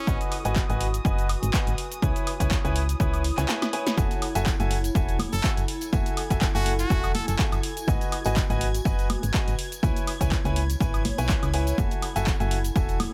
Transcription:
Already playing: C#4 F#4 G#5 D#6
0.07 G#1 F#4 B4 D#5 G#5, kick, shaker
0.21 closed hi-hat, shaker
0.32 open hi-hat, high woodblock
0.45 G#1 F#4 B4 D#5 G#5, closed hi-hat, shaker
0.56 kick, clap, shaker
0.69 G#1 F#4 B4 D#5 G#5, closed hi-hat, shaker
0.81 open hi-hat
0.94 closed hi-hat, shaker
1.05 F#1 F#4 B4 D#5 G#5, kick, shaker
1.18 closed hi-hat, shaker
1.29 open hi-hat, high woodblock
1.43 G#1, closed hi-hat, shaker
1.54 F#4 B4 D#5 G#5, kick, clap, shaker
1.67 G#1, closed hi-hat, shaker
1.78 E4, open hi-hat
1.92 closed hi-hat, shaker
2.02 C#2 E4 B4 C#5 G#5, kick, shaker
2.16 closed hi-hat, shaker
2.27 open hi-hat, high woodblock
2.40 C#2 E4 B4 C#5 G#5, kick, closed hi-hat, shaker
2.51 kick, clap, shaker
2.65 C#2 E4 B4 C#5 G#5, closed hi-hat, shaker
2.76 B5, open hi-hat
2.89 closed hi-hat, shaker
3.00 C#2 E4 B4 C#5 G#5, kick, shaker
3.13 closed hi-hat, high woodblock, shaker
3.24 open hi-hat
3.38 C#2 E4 B4 C#5 G#5, clap, closed hi-hat, shaker
3.49 E4 B4 C#5 G#5, snare, clap, shaker
3.62 snare, closed hi-hat, high woodblock, shaker
3.73 E4 B4 C#5 G#5, open hi-hat
3.87 snare, closed hi-hat, shaker
3.97 F#1 F#4 A4 E5 G#5 G#6, kick, tambourine, high conga, shaker
4.11 closed hi-hat, tambourine, shaker
4.22 open hi-hat, high woodblock
4.35 F#1 F#4 A4 E5 G#5, closed hi-hat, tambourine, shaker
4.46 kick, clap, tambourine, shaker
4.59 F#1 F#4 A4 E5 G#5, closed hi-hat, tambourine, high conga, shaker
4.71 open hi-hat
4.84 G#5, closed hi-hat, tambourine, shaker
4.95 E1 F#4 A4 E5 G#5, kick, tambourine, shaker
5.08 closed hi-hat, tambourine, shaker
5.19 open hi-hat, high conga, high woodblock
5.32 F#1 A4, closed hi-hat, tambourine, shaker
5.44 F#4 A4 E5 G#5, kick, clap, tambourine, shaker
5.57 F#1, closed hi-hat, tambourine, shaker
5.68 open hi-hat
5.81 closed hi-hat, tambourine, shaker
5.93 F#1 F#4 A4 E5 G#5, kick, tambourine, high conga, shaker
6.06 closed hi-hat, tambourine, shaker
6.17 open hi-hat, high woodblock
6.30 F#1 F#4 A4 E5 G#5, kick, closed hi-hat, tambourine, shaker
6.41 kick, clap, tambourine, shaker
6.55 F#1 F#4 A4 E5 G#5, closed hi-hat, tambourine, high conga, shaker
6.66 open hi-hat
6.79 F#4, closed hi-hat, tambourine, shaker
6.90 E1 F#4 A4 E5 G#5, kick, tambourine, shaker
7.03 closed hi-hat, tambourine, high woodblock, shaker
7.15 A4, open hi-hat, high conga
7.28 F#1 A4, closed hi-hat, tambourine, shaker
7.39 F#4 A4 E5 G#5, kick, clap, tambourine, shaker
7.52 F#1, closed hi-hat, tambourine, high woodblock, shaker
7.63 F#4, open hi-hat
7.77 closed hi-hat, tambourine, shaker
7.87 G#1 F#4 B4 D#5 G#5, kick, tambourine, high conga, shaker
8.01 closed hi-hat, tambourine, shaker
8.12 open hi-hat, high woodblock
8.24 G#1 F#4 B4 D#5 G#5, closed hi-hat, tambourine, shaker
8.36 kick, clap, tambourine, shaker
8.48 G#1 F#4 B4 D#5 G#5, closed hi-hat, tambourine, high conga, shaker
8.61 open hi-hat
8.75 closed hi-hat, tambourine, shaker
8.85 F#1 F#4 B4 D#5 G#5, kick, tambourine, shaker
8.99 closed hi-hat, tambourine, shaker
9.10 open hi-hat, high conga, high woodblock
9.23 G#1, closed hi-hat, tambourine, shaker
9.34 F#4 B4 D#5 G#5, kick, clap, tambourine, shaker
9.47 G#1, closed hi-hat, tambourine, shaker
9.59 E4, open hi-hat
9.72 closed hi-hat, tambourine, shaker
9.83 C#2 E4 B4 C#5 G#5, kick, tambourine, high conga, shaker
9.96 closed hi-hat, tambourine, shaker
10.05 C#5, open hi-hat, high woodblock
10.21 C#2 E4 B4 C#5 G#5, kick, closed hi-hat, tambourine, shaker
10.32 kick, clap, tambourine, shaker
10.44 C#2 E4 B4 C#5 G#5, closed hi-hat, tambourine, high conga, shaker
10.56 B5, open hi-hat
10.70 closed hi-hat, tambourine, shaker
10.80 G#1 E4 B4 C#5 G#5, kick, tambourine, shaker
10.94 closed hi-hat, tambourine, high woodblock, shaker
11.05 open hi-hat, high conga
11.18 B1 E4 B4 C#5 G#5, closed hi-hat, tambourine, shaker
11.29 E4 B4 C#5 G#5, kick, clap, tambourine, shaker
11.43 C#2, closed hi-hat, tambourine, high woodblock, shaker
11.54 E4 B4 C#5 G#5, open hi-hat
11.67 closed hi-hat, tambourine, shaker
11.78 F#1 F#4 A4 E5 G#5, kick, tambourine, high conga, shaker
11.91 closed hi-hat, tambourine, shaker
12.01 A4, open hi-hat, high woodblock
12.09 G#5
12.16 F#1 F#4 A4 E5 G#5, closed hi-hat, tambourine, shaker
12.27 kick, clap, tambourine, shaker
12.40 F#1 F#4 A4 E5 G#5, closed hi-hat, tambourine, high conga, shaker
12.51 open hi-hat
12.64 closed hi-hat, tambourine, shaker
12.76 E1 F#4 A4 E5 G#5, kick, tambourine, shaker
12.89 closed hi-hat, tambourine, shaker
13.00 open hi-hat, high conga, high woodblock

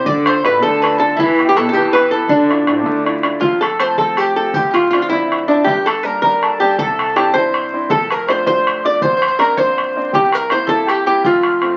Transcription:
0.04 D3 D5, bodhran
0.25 D4 F4 A4 C5, bodhran
0.43 A2 D4 F4 A4 B4, bodhran
0.62 D3 A3 A4, bodhran
0.82 D4 F4 A4 B4, bodhran
0.98 D4 F4 A4
1.16 E3 E4, bodhran
1.39 B3 E4 G4, bodhran
1.46 G4
1.56 B2 B3 E4 G4 A4, bodhran
1.69 G4 A4
1.73 B2 E3 G4, bodhran
1.87 A4
1.93 B3 E4 G4 B4, bodhran
2.11 B3 E4 G4 A4
2.29 D3 D4, bodhran
2.50 D4 E4 F4, bodhran
2.55 D4
2.67 A2 D4 E4 F4, bodhran
2.75 C4
2.79 D4
2.85 D3 A3, bodhran
3.05 D4 E4 F4, bodhran
3.23 D4 E4 F4, bodhran
3.41 F1 F2 F4, bodhran
3.61 A4, bodhran
3.80 F3 A3 C4 C5, bodhran
3.98 F3 A3 C4 A4, bodhran
4.17 G4, bodhran
4.36 F3 A3 C4 A4
4.54 D1 D2 G4, bodhran
4.71 F4 G4, bodhran
4.76 F4
4.91 F3 C4 D4 F4, bodhran
5.02 F4
5.09 F3 C4 D4 E4, bodhran
5.32 bodhran
5.48 F3 C4 D4
5.64 G1 G2 G4, bodhran
5.86 A4, bodhran
6.03 G3 A#3 D4 A#4
6.22 G3 A#3 D4 A#4, bodhran
6.43 A4, bodhran
6.60 G3 A#3 D4 G4
6.78 C2 C3 A4, bodhran
6.99 bodhran
7.16 C4 D4 E4 G4, bodhran
7.33 C4 D4 E4 C5, bodhran
7.54 bodhran
7.73 C4 D4 E4
7.90 F1 F2 A4, bodhran
8.10 A#4, bodhran
8.28 A3 D4 F4 C5, bodhran
8.46 A3 D4 F4 C5, bodhran
8.67 bodhran
8.85 A3 D4 F4 D5
8.96 D5
9.02 A#1 A#2 C5, bodhran
9.17 C5
9.22 bodhran
9.28 C5
9.39 A#3 C4 D4 A#4, bodhran
9.57 A#3 C4 D4 C5, bodhran
9.78 bodhran
9.96 A#3 C4 D4
10.13 C2 C3 G4, bodhran
10.32 A#4, bodhran
10.50 A#3 C4 E4 C5, bodhran
10.67 A#3 C4 E4 A4, bodhran
10.87 G4, bodhran
11.05 A#3 C4 E4 G4
11.24 F1 F2 F4, bodhran
11.43 bodhran
11.61 F3 A3 C4, bodhran

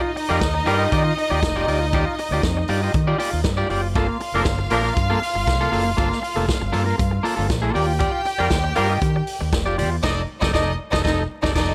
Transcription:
Already playing: D#4 F4 D#5
0.03 muted clean electric guitar stroke
0.16 muted clean electric guitar stroke, open hi-hat
0.29 F2 G3 A#3 F4 G4 A#4 D5
0.41 D#2, muted clean electric guitar stroke, kick, snare, closed hi-hat
0.54 muted clean electric guitar stroke
0.66 G2 G3 A#3 F4 G4 A#4 D5, open hi-hat
0.79 F4 G4 D#5
0.92 D#3 F4 G4 D5, kick, closed hi-hat
1.05 muted clean electric guitar stroke
1.17 muted clean electric guitar stroke, open hi-hat
1.30 D#2 F4 G4 D5
1.42 F1, muted clean electric guitar stroke, kick, snare, closed hi-hat
1.56 F4 G4 D5
1.68 D2 F4 G4 D5, open hi-hat
1.81 muted clean electric guitar stroke
1.93 D#2 F4 G4 D5, kick, closed hi-hat
2.07 muted clean electric guitar stroke
2.18 muted clean electric guitar stroke, open hi-hat
2.31 D2 F4 G4 D5
2.43 F2, muted clean electric guitar stroke, kick, snare, closed hi-hat
2.57 muted clean electric guitar stroke
2.68 G2 F4 G4 D5, open hi-hat
2.83 F4 G4 D#5
2.94 D#3, muted clean electric guitar stroke, kick, closed hi-hat
3.07 F4 G4 D5
3.18 F4 G4 D5, open hi-hat
3.32 D#2, muted clean electric guitar stroke
3.44 G2, muted clean electric guitar stroke, kick, snare, closed hi-hat
3.57 F4 G4 D5
3.70 F#1 F4 G4 D5, open hi-hat
3.83 muted clean electric guitar stroke
3.95 G1 A#3 F4 A4 F5, kick, closed hi-hat
4.09 muted clean electric guitar stroke
4.20 muted clean electric guitar stroke, open hi-hat
4.34 F1 F3 A#3 D4 F4 A4 A#4
4.45 G1, kick, snare, closed hi-hat
4.59 muted clean electric guitar stroke
4.70 A#1 F3 A#3 D4 F4 A4 A#4, open hi-hat
4.83 A#3 F4 A#4
4.96 G2, muted clean electric guitar stroke, kick, closed hi-hat
5.10 A#3 F4 A4
5.21 muted clean electric guitar stroke, open hi-hat
5.35 G1, muted clean electric guitar stroke
5.47 C2, muted clean electric guitar stroke, kick, snare, closed hi-hat
5.61 A#3 F4 A4
5.72 F#1 A#3 F4 A4, open hi-hat
5.86 muted clean electric guitar stroke
5.97 G1 A#3 F4 A4, kick, closed hi-hat
6.11 muted clean electric guitar stroke, snare
6.22 muted clean electric guitar stroke, open hi-hat
6.36 F1 A#3 F4 A4
6.49 kick, snare, closed hi-hat
6.61 G1, muted clean electric guitar stroke
6.72 G2 A#3 F4 A4, open hi-hat
6.86 A#3 F4 A#4
6.98 G2, muted clean electric guitar stroke, kick, closed hi-hat
7.11 muted clean electric guitar stroke
7.23 A#3 F4 A4, open hi-hat
7.36 G1 A#3 F4 A4
7.49 A#1, muted clean electric guitar stroke, kick, snare, closed hi-hat
7.62 A#3 F4 A4
7.74 D#2 F4 G4 D5 G5, open hi-hat
7.88 muted clean electric guitar stroke
7.99 F4 G4 D5, kick, closed hi-hat
8.13 muted clean electric guitar stroke
8.25 muted clean electric guitar stroke, open hi-hat
8.38 F2 G3 A#3 F4 G4 A#4 D5
8.50 D#2, muted clean electric guitar stroke, kick, snare, closed hi-hat
8.64 muted clean electric guitar stroke
8.75 G2 G3 A#3 F4 G4 A#4 D5, open hi-hat
8.89 F4 G4 D#5
9.01 D#3, muted clean electric guitar stroke, kick, closed hi-hat
9.16 muted clean electric guitar stroke
9.27 open hi-hat
9.41 D#2, muted clean electric guitar stroke
9.53 F1, muted clean electric guitar stroke, kick, snare, closed hi-hat
9.66 F4 G4 D5
9.78 E2 F4 G4 D5, open hi-hat
9.92 muted clean electric guitar stroke
10.03 F1 D#4 A4 D5 D#5, kick, snare, crash
10.40 F1 D#4 A4 D5 D#5, kick, snare
10.53 F1 D#4 A4 D5 D#5, kick, snare
10.91 F1 D#4 A4 D#5, kick, snare
11.04 F1 D#4 A4 D#5, kick, snare
11.43 F1 D#4 A4 D5 D#5, kick, snare
11.54 F1 D#4 A4 D5 D#5, kick, snare, crash

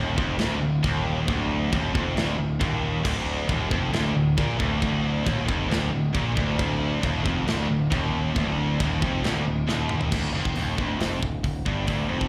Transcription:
Already playing: D#1 D#2
0.17 F1 F2, kick
0.39 D1 D2, snare, china
0.62 D1 D2
0.83 D#1 D#2, kick, china
1.28 D1 D2, kick, china
1.72 D#1 D#2, kick, china
1.95 F1 F2, kick
2.17 D1 D2, snare, china
2.38 D1 D2
2.60 D#1 D#2, kick, china
3.03 D1 D2, kick, china, crash
3.49 D#1 D#2, kick, china
3.70 F1 F2, kick
3.92 D1 D2, snare, china
4.14 D1 D2
4.37 A#1 A#2, kick, china
4.59 D1 D2, kick
4.80 D1 D2, kick, china
5.24 D#1 D#2, kick, china
5.45 F1 F2, kick
5.68 D1 D2, china
5.72 snare
5.90 D1 D2
6.13 A#1 A#2, kick, china
6.35 D1 D2, kick
6.57 D1 D2, kick, china
7.00 D#1 D#2, kick, china
7.23 F1 F2, kick
7.46 D1 D2, snare, china
7.68 D1 D2
7.90 D#1 D#2, kick, china
8.34 D1 D2, kick, china
8.79 D#1 D#2, kick, china
9.01 F1 F2, kick
9.23 D1 D2, snare, china
9.45 D1 D2
9.67 D#1 D#2, snare
9.89 mid tom
10.01 floor tom
10.11 D1 D2, kick, crash
10.33 F1 F2
10.45 kick
10.54 D#1 D#2, open hi-hat
10.76 D1 D2, kick
10.99 F1 F2, snare, open hi-hat
11.21 D1 D2, kick
11.43 D1 D2, kick, open hi-hat
11.66 G1 G2, kick
11.87 D1 D2, kick, open hi-hat
12.09 F1 F2
12.21 kick

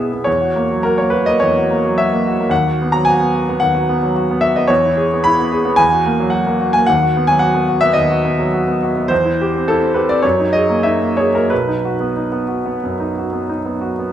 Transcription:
Already playing: B2 B3 E4 D#5 E5 F#5
0.00 G#4
0.13 B3
0.24 E2 C#5
0.41 F#4
0.56 A#3
0.71 F#3
0.83 F#4 A#4
0.98 A#3 C#5
1.10 F#4 B4
1.26 A#3 D#5
1.40 E2 C#5
1.57 F#4
1.70 A#3
1.85 F#3
1.98 F#4 E5
2.13 A#3
2.27 F#4
2.40 A#3
2.49 D#2 F#5
2.68 F#4
2.81 B3
2.92 F#3 A#5
3.05 F#4 G#5
3.21 B3
3.36 F#4
3.49 B3
3.60 D#2 F#5
3.75 F#4
3.89 B3
4.03 F#3
4.16 F#4
4.31 B3
4.41 F#4 E5
4.56 B3 D#5
4.68 E2 C#5
4.85 E4
4.97 G#4
5.13 B3
5.24 E4 B5
5.40 B3
5.52 G#4
5.65 B3
5.76 E2 G#5
5.93 F#4
6.06 A#3
6.20 F#3
6.30 F#4 F#5
6.47 A#3
6.61 F#4
6.73 A#3 G#5
6.87 D#2 F#5
7.03 F#4
7.17 B3
7.27 F#3 G#5
7.39 F#4 F#5
7.54 B3
7.68 F#4
7.81 B3 E5
7.93 D#2 D#5
8.10 F#4
8.25 B3
8.39 F#3
8.54 F#4
8.68 B3
8.83 F#4
8.96 B3
9.08 E2 C5
9.25 E4
9.41 G4
9.56 C4
9.68 E4 A4
9.83 C4
9.94 G4 B4
10.09 C4 D5
10.22 F#2 C#5
10.40 D#4
10.53 G#4 D#5
10.70 A#3
10.83 D#4 E5
11.02 A#3
11.17 G#4 C#5
11.35 A#3 A#4
11.50 B1 B4
11.68 D#4
11.85 F#4
12.00 B3
12.16 D#4
12.32 B3
12.48 F#4
12.65 B3
12.83 F#2
13.00 D#4
13.18 F#4
13.33 B3
13.49 D#4
13.66 B3
13.81 F#4
13.99 B3

